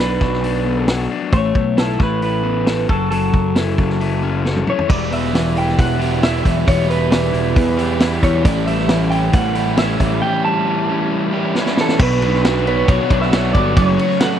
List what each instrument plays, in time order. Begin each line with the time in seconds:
Already playing: picked electric bass B1, overdriven electric guitar B2
0.00 overdriven electric guitar D4, clean electric guitar B4
0.21 picked electric bass B1, overdriven electric guitar F#3, kick, snare
0.33 snare
0.44 overdriven electric guitar D4, open hi-hat
0.66 overdriven electric guitar B3
0.88 overdriven electric guitar F#4, snare, open hi-hat
1.10 overdriven electric guitar D4
1.32 picked electric bass A1, overdriven electric guitar A3, clean electric guitar C#5, kick, open hi-hat
1.55 picked electric bass B1, kick
1.77 overdriven electric guitar E4, clean electric guitar A4, snare, open hi-hat
1.99 picked electric bass A1, overdriven electric guitar A3, kick, snare
2.03 clean electric guitar B4
2.22 overdriven electric guitar E4, clean electric guitar B4, open hi-hat
2.43 overdriven electric guitar B3
2.66 overdriven electric guitar A4, snare, open hi-hat
2.89 picked electric bass F#1, overdriven electric guitar F#3, clean electric guitar A4, kick
3.11 overdriven electric guitar F#3, clean electric guitar A4, open hi-hat
3.34 picked electric bass F#1, kick
3.55 overdriven electric guitar E4, snare, open hi-hat
3.78 picked electric bass F#1, overdriven electric guitar F#3, kick
3.89 snare
4.00 overdriven electric guitar E4, open hi-hat
4.23 overdriven electric guitar C#4
4.45 overdriven electric guitar A4, snare
4.56 high tom
4.67 overdriven electric guitar E4, clean electric guitar C#5, mid tom
4.78 floor tom
4.89 picked electric bass E1, overdriven electric guitar E2 B2 E3 G3 B3 E4, clean electric guitar D5, kick, crash
5.11 overdriven electric guitar B3, clean electric guitar E5, open hi-hat
5.24 snare
5.34 overdriven electric guitar E3, snare, open hi-hat
5.56 overdriven electric guitar E4, clean electric guitar G5, open hi-hat
5.68 snare
5.78 picked electric bass E1, overdriven electric guitar B3, clean electric guitar F#5, kick, open hi-hat
6.00 overdriven electric guitar B2 E3 G3 B3 E4 G4, open hi-hat
6.04 overdriven electric guitar E2
6.22 overdriven electric guitar E2 B2 E3 G3 B3 E4, clean electric guitar E5, snare, open hi-hat
6.44 picked electric bass E1, overdriven electric guitar E3, kick, open hi-hat
6.66 picked electric bass E1, overdriven electric guitar E2 B2 E3 G3 B3 E4, clean electric guitar C#5, kick, open hi-hat
6.89 overdriven electric guitar B3, clean electric guitar B4, open hi-hat
7.11 overdriven electric guitar E3, snare, open hi-hat
7.33 picked electric bass E1, overdriven electric guitar E4, open hi-hat
7.55 picked electric bass E2, overdriven electric guitar B3, kick, open hi-hat
7.77 overdriven electric guitar E2 B2 E3 G3 B3 E4 G4, open hi-hat
7.99 overdriven electric guitar E2 B2 E3 G3 B3 E4, snare, open hi-hat
8.22 picked electric bass E2, overdriven electric guitar E3, clean electric guitar C#5, kick, open hi-hat
8.43 picked electric bass A1, overdriven electric guitar A2 E3 G3 C#4, clean electric guitar D5, kick, open hi-hat
8.48 overdriven electric guitar E4
8.66 overdriven electric guitar G3, clean electric guitar E5, open hi-hat
8.78 snare
8.89 overdriven electric guitar E3, snare, open hi-hat
9.11 overdriven electric guitar C#4, clean electric guitar G5, open hi-hat
9.33 picked electric bass A1, overdriven electric guitar G3, clean electric guitar F#5, kick, open hi-hat
9.53 overdriven electric guitar A2 E3 G3 C#4 E4 G4, open hi-hat
9.76 overdriven electric guitar A2 E3 G3 C#4 E4, clean electric guitar E5, snare, open hi-hat
10.00 picked electric bass A1, overdriven electric guitar E3, kick, open hi-hat
10.20 overdriven electric guitar A2 E3 G3 C#4, clean electric guitar G5
10.24 overdriven electric guitar E4
10.44 overdriven electric guitar G3, clean electric guitar A5
10.67 overdriven electric guitar E3
10.89 overdriven electric guitar C#4
11.11 overdriven electric guitar G3
11.31 overdriven electric guitar A2 E3 G3 C#4 E4 G4
11.53 overdriven electric guitar A2 E3 G3 C#4, snare
11.57 overdriven electric guitar E4
11.66 snare
11.77 overdriven electric guitar E3, clean electric guitar A4, snare
11.89 snare
11.99 picked electric bass B1, overdriven electric guitar B2 F#3 B3 D4 F#4, string machine B4 F#5 C#6, clean electric guitar B4, kick, crash
12.20 picked electric bass B1, overdriven electric guitar D4 F#4, ride
12.24 overdriven electric guitar B3
12.33 snare
12.44 overdriven electric guitar F#3 B3 D4 F#4, snare, ride
12.66 overdriven electric guitar B3 D4 F#4 C#5, clean electric guitar B4, ride
12.88 picked electric bass B1, overdriven electric guitar B2 F#3 B3 D4 F#4, clean electric guitar C#5, kick, ride
13.09 picked electric bass B1, overdriven electric guitar B3 D4 F#4, kick, ride
13.21 clean electric guitar E5, snare
13.32 overdriven electric guitar F#3 B3 D4 F#4 C#5, snare, ride
13.53 picked electric bass G1, overdriven electric guitar F#4, clean electric guitar D5, kick, ride
13.75 picked electric bass F#1, overdriven electric guitar F#2 C#3 F#3 A3, string machine A4 C#5 F#5, clean electric guitar D5, kick, ride
13.80 overdriven electric guitar C#4
13.88 clean electric guitar C#5
13.97 overdriven electric guitar A3 C#4 F#4, ride
14.02 overdriven electric guitar F#3
14.10 snare
14.20 overdriven electric guitar C#3 F#3 A3 C#4 A4, clean electric guitar F#5, snare, ride